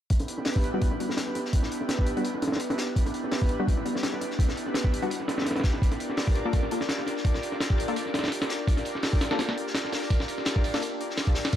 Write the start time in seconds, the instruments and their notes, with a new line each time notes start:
0.10 analog synth pad B3 D4 E4 G4 B4, kick, closed hi-hat, ride
0.19 snare, closed hi-hat
0.28 closed hi-hat, ride
0.38 snare
0.45 snare, open hi-hat, ride
0.56 kick
0.63 closed hi-hat, ride
0.74 synth stab G3 B3 D4 F#4
0.81 kick, closed hi-hat, ride
0.92 snare
1.00 synth stab G3 B3 D4 F#4, closed hi-hat, ride
1.09 snare
1.17 analog synth pad B3 D4 E4 G4 B4, snare, closed hi-hat, ride
1.27 snare
1.35 snare, closed hi-hat, ride
1.45 snare, ride
1.53 analog synth pad B3 D4 E4 G4 B4, kick, closed hi-hat, ride
1.63 snare
1.71 closed hi-hat, ride
1.81 snare
1.89 snare, closed hi-hat, ride
1.99 kick
2.06 closed hi-hat, ride
2.16 synth stab G3 B3 D4 F#4, closed hi-hat, ride
2.24 closed hi-hat, ride
2.34 snare
2.42 snare, closed hi-hat, ride
2.48 snare, ride
2.52 snare, ride
2.56 snare, closed hi-hat, ride
2.60 analog synth pad B3 D4 E4 G4 B4, ride
2.70 snare, closed hi-hat
2.78 snare, closed hi-hat, ride
2.96 analog synth pad B3 D4 E4 G4 B4, kick, closed hi-hat, ride
3.06 snare, closed hi-hat
3.14 closed hi-hat, ride
3.24 snare
3.31 snare, open hi-hat, ride
3.42 kick
3.49 closed hi-hat, ride
3.59 synth stab G3 B3 D4 F#4
3.68 kick, closed hi-hat, ride
3.77 snare
3.85 synth stab G3 B3 D4 F#4, closed hi-hat, ride
3.95 snare
4.03 analog synth pad B3 D4 E4 G4 B4, snare, closed hi-hat, ride
4.13 snare
4.21 snare, closed hi-hat, ride
4.30 snare, ride
4.39 analog synth pad B3 D4 E4 G4 B4, kick, closed hi-hat, ride
4.48 snare
4.57 closed hi-hat, ride
4.66 snare
4.74 snare, closed hi-hat, ride
4.84 kick
4.92 closed hi-hat, ride
5.02 synth stab G3 B3 D4 F#4, closed hi-hat, ride
5.10 closed hi-hat, ride
5.20 snare
5.28 analog synth pad B3 D4 E4 G4 B4, snare, closed hi-hat, ride
5.38 snare, ride
5.42 snare, ride
5.46 snare, closed hi-hat, ride
5.51 snare, ride
5.56 snare, closed hi-hat, ride
5.60 snare, ride
5.64 analog synth pad B3 D4 E4 G4 B4, kick, snare, closed hi-hat, ride
5.74 snare
5.82 analog synth pad D4 F4 G4 A#4 D5, kick, closed hi-hat, ride
5.91 snare, closed hi-hat
6.00 closed hi-hat, ride
6.10 snare
6.17 snare, open hi-hat, ride
6.27 kick
6.35 closed hi-hat, ride
6.45 synth stab A#3 D4 F4 A4
6.53 kick, closed hi-hat, ride
6.63 snare
6.71 synth stab A#3 D4 F4 A4, closed hi-hat, ride
6.81 snare
6.89 analog synth pad D4 F4 G4 A#4 D5, snare, closed hi-hat, ride
6.99 snare
7.07 snare, closed hi-hat, ride
7.17 snare, ride
7.25 analog synth pad D4 F4 G4 A#4 D5, kick, closed hi-hat, ride
7.34 snare
7.42 closed hi-hat, ride
7.52 snare
7.60 snare, closed hi-hat, ride
7.70 kick
7.78 closed hi-hat, ride
7.88 synth stab A#3 D4 F4 A4, closed hi-hat, ride
7.96 closed hi-hat, ride
8.06 snare
8.14 snare, closed hi-hat, ride
8.19 snare, ride
8.23 snare, ride
8.28 snare, closed hi-hat, ride
8.32 analog synth pad D4 F4 G4 A#4 D5, ride
8.42 snare
8.49 snare, closed hi-hat, ride
8.67 analog synth pad D4 F4 G4 A#4 D5, kick, closed hi-hat, ride
8.77 snare, closed hi-hat
8.85 closed hi-hat, ride
8.95 snare
9.02 snare, open hi-hat, ride
9.13 kick
9.21 snare, closed hi-hat, ride
9.31 synth stab A#3 D4 F4 A4, snare, ride
9.39 snare, closed hi-hat, ride
9.49 snare, ride
9.57 closed hi-hat
9.67 snare
9.75 analog synth pad D4 F4 G4 A#4 D5, snare, closed hi-hat, ride
9.85 snare
9.92 snare, open hi-hat, ride
10.02 snare, ride
10.10 analog synth pad D4 F4 G4 A#4 D5, kick, closed hi-hat, ride
10.20 snare
10.28 closed hi-hat, ride
10.38 snare
10.45 snare, closed hi-hat, ride
10.56 kick
10.64 open hi-hat, ride
10.74 synth stab A#3 D4 F4 A4, snare, open hi-hat, ride
10.82 closed hi-hat, ride
11.00 analog synth pad D4 F4 G4 A#4 D5, closed hi-hat
11.10 snare
11.17 snare, open hi-hat, ride
11.27 kick, closed hi-hat
11.35 analog synth pad D4 F4 G4 A#4 D5, snare, open hi-hat, ride
11.45 snare, ride
11.52 analog synth pad B3 D4 E4 G4 B4, kick, closed hi-hat, ride